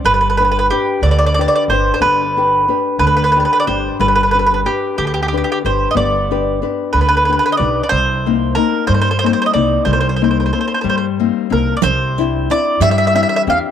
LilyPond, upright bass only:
\new Staff \with { instrumentName = "Upright bass" } { \clef bass \time 6/8 \key c \minor \tempo 4. = 61 g,,4. d,4 g,,8 | g,,4. d,4 g,,8 | g,,4. d,4 g,,8 | g,,4. d,4 b,,8 |
c,4. g,4 c,8 | c,4. g,4 c,8 | \key c \major c,4. g,4 e,16 r16 | }